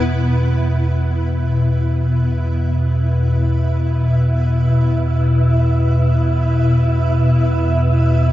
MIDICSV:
0, 0, Header, 1, 4, 480
1, 0, Start_track
1, 0, Tempo, 500000
1, 7992, End_track
2, 0, Start_track
2, 0, Title_t, "Synth texture"
2, 0, Program_c, 0, 99
2, 65, Note_on_c, 0, 76, 78
2, 77, Note_on_c, 0, 64, 79
2, 7992, Note_off_c, 0, 64, 0
2, 7992, Note_off_c, 0, 76, 0
2, 7992, End_track
3, 0, Start_track
3, 0, Title_t, "Ambient pad"
3, 0, Program_c, 1, 92
3, 0, Note_on_c, 1, 59, 70
3, 0, Note_on_c, 1, 64, 73
3, 0, Note_on_c, 1, 71, 77
3, 7992, Note_off_c, 1, 59, 0
3, 7992, Note_off_c, 1, 64, 0
3, 7992, Note_off_c, 1, 71, 0
3, 7992, End_track
4, 0, Start_track
4, 0, Title_t, "Synth drone"
4, 0, Program_c, 2, 95
4, 0, Note_on_c, 2, 40, 73
4, 97, Note_on_c, 2, 47, 73
4, 99, Note_off_c, 2, 40, 0
4, 111, Note_on_c, 2, 40, 75
4, 7992, Note_off_c, 2, 40, 0
4, 7992, Note_off_c, 2, 47, 0
4, 7992, End_track
0, 0, End_of_file